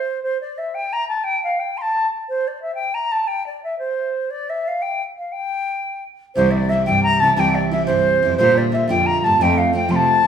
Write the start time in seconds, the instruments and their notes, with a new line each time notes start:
Already playing: flute C5
0.23 flute C5
0.41 flute D5
0.58 flute E5
0.74 flute G5
0.93 flute A#5
1.08 flute A5
1.24 flute G5
1.44 flute F5
1.59 flute G5
1.77 flute C6
1.81 flute A5
2.29 flute C5
2.48 flute D5
2.62 flute E5
2.75 flute G5
2.94 flute A#5
3.12 flute A5
3.27 flute G5
3.46 flute D5
3.64 flute E5
3.79 flute C5
4.30 flute D5
4.50 flute E5
4.68 flute F5
4.82 flute G5
5.18 flute F5
5.32 flute G5
6.35 cello C2, steel-string acoustic guitar C3 E3 G3 C4 E4, flute C5
6.51 flute D5 E5
6.69 steel-string acoustic guitar E3 G3 C4 E4, flute E5
6.86 cello G2, steel-string acoustic guitar C3 E3 G3 C4 E4, flute G5
7.03 flute A#5
7.20 cello C3, steel-string acoustic guitar E3 G3 C4 E4, flute A5
7.36 cello C2, steel-string acoustic guitar C3 E3 G3 C4 E4, flute G5 A5
7.55 flute D5
7.71 steel-string acoustic guitar E3 G3 C4 E4, flute E5
7.86 cello G2, steel-string acoustic guitar C3 E3 G3 C4 E4, flute C5
8.22 cello F2, steel-string acoustic guitar E3 G3 C4 E4
8.37 steel-string acoustic guitar A#2 D3 G3 A#3 F4, cello A#2, flute C5
8.58 flute D5
8.72 steel-string acoustic guitar D3 G3 A#3 F4, flute E5
8.88 cello F2, steel-string acoustic guitar A#2 D3 G3 A#3 F4, flute G5
9.06 flute A#5
9.20 steel-string acoustic guitar D3, flute A5 A#5
9.25 cello G2, steel-string acoustic guitar G3 A#3 F4
9.39 cello F2, steel-string acoustic guitar F3 A3 C4 F4, flute G5 A5
9.58 flute F5
9.73 steel-string acoustic guitar F3 A3 C4 F4, flute G5
9.88 cello C3, steel-string acoustic guitar F3 A3 C4 F4, flute C6
9.96 flute A5
10.23 steel-string acoustic guitar F3 A3, cello F3